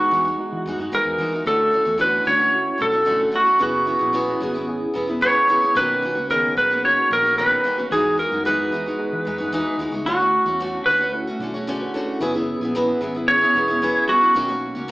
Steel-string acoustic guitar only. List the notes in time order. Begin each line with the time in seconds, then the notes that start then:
Already playing: E3 G#3 D#4 F#4
0.11 E3 G#3 D#4 F#4
0.25 G#3 D#4 F#4
0.66 E3 G#3 D#4 F#4
0.78 G#3 D#4 F#4
0.92 E3 G#3 D#4 F#4
1.18 E3 G#3 D#4 F#4
1.32 G#3 D#4 F#4
1.46 D3 A3 C#4 F#4
1.71 D3 A3 C#4 F#4
1.85 A3 C#4 F#4
1.98 D3 A3 C#4 F#4
2.25 D3 A3 C#4 F#4
2.38 A3 C#4 F#4
2.78 D3 A3 C#4 F#4
2.92 A3 C#4 F#4
3.05 D3 A3 C#4 F#4
3.32 D3 A3 C#4 F#4
3.45 A3 C#4 F#4
3.59 F#3 B3 E4 G#4
3.85 F#3 B3 E4 G#4
3.99 B3 E4 G#4
4.13 F#3 B3 E4 G#4
4.40 F#3 B3 E4 G#4
4.54 B3 E4 G#4
4.94 F#3 B3 E4 G#4
5.07 B3 E4 G#4
5.21 F#3 B3 E4 G#4
5.47 F#3 B3 E4 G#4
5.61 B3 E4 G#4
5.75 B2 D#3 A#3 C#4 F#4
6.02 D#3 A#3 C#4 F#4
6.15 A#3 C#4 F#4
6.30 B2 D#3 A#3 C#4 F#4
6.57 D#3 A#3 C#4 F#4
6.70 A#3 C#4 F#4
7.11 D#3 A#3 C#4 F#4
7.25 A#3 C#4 F#4
7.38 B2 D#3 A#3 C#4 F#4
7.64 D#3 A#3 C#4 F#4
7.78 A#3 C#4 F#4
7.91 E3 G#3 D#4 F#4
8.17 E3 G#3 D#4 F#4
8.31 G#3 D#4 F#4
8.45 E3 G#3 D#4 F#4
8.72 E3 G#3 D#4 F#4
8.86 G#3 D#4 F#4
9.25 E3 G#3 D#4 F#4
9.38 G#3 D#4 F#4
9.52 E3 G#3 D#4 F#4
9.79 E3 G#3 D#4 F#4
9.92 G#3 D#4 F#4
10.06 D3 A3 C#4 F#4
10.19 A3 C#4 F#4
10.46 A3 C#4 F#4
10.60 D3 A3 C#4 F#4
10.87 D3 A3 C#4 F#4
11.01 A3 C#4 F#4
11.27 A3 C#4 F#4
11.40 D3 A3 C#4 F#4
11.54 A3 C#4 F#4
11.67 D3 A3 C#4 F#4
11.94 D3 A3 C#4 F#4
12.21 F#3 B3 E4 G#4
12.34 B3 E4 G#4
12.61 B3 E4 G#4
12.75 F#3 B3 E4 G#4
13.01 F#3 B3 E4 G#4
13.14 B3 E4 G#4
13.41 B3 E4 G#4
13.55 F#3 B3 E4 G#4
13.68 B3 E4 G#4
13.82 F#3 B3 E4 G#4
14.08 F#3 B3 E4 G#4
14.21 E4 G#4
14.34 B2 D#3 A#3 C#4 F#4
14.48 A#3 C#4 F#4
14.75 A#3 C#4 F#4
14.88 B2